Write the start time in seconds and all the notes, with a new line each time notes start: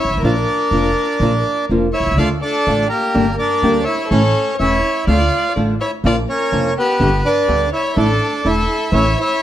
Already playing: C#5
0.00 E4 E5
0.05 G1
0.11 G#1
0.17 A1
0.23 A#1 F3 A#3 D4 F4 A#4 D5
0.71 F1 F3 A#3 D4 F4
1.20 A#1 F3 A#3 D4 F4
1.69 F1 F3 A#3 D4 F4
1.93 E4 C#5 E5
2.00 B1
2.06 C2
2.11 C#2
2.18 D2 D3 A3 D4 F4 D5 F5
2.42 D4 A4 D5
2.67 A1 D3 A3 D4 F4
2.89 A#3 G4 A#4
3.15 G1 D3 G3 A#3 D4 G4
3.36 A#4 D5
3.40 D4
3.62 D2 D3 G3 A#3 D4 G4
3.84 E4 C#5 E5
4.09 A1 E3 A3 C#4 E4 A4 C#5
4.13 E4
4.58 E1 E3 A3 C#4 E4 C#5 E5
5.07 D2 D3 A3 D4 F4 D5 F5
5.55 A1 D3 A3 D4 F4
5.80 E4 C#5 E5
6.04 A#1 F3 A#3 D4 F4 D5 F5
6.29 C#4 A#4 C#5
6.51 F1 F3 A#3 D4 F4
6.78 B3 G4 B4
7.00 G1 D3 G3 A3 B3 G4
7.25 D4 B4 D5
7.47 D2 D3 G3 A3 B3 G4
7.73 E4 C#5 E5
7.96 A1 D3 A3 D4 E4 A4 D5
8.44 E1 D3 A3 D4 E4 A4 E5
8.92 A1 E3 A3 C#4 E4 C#5 E5
9.19 E4 C#5 E5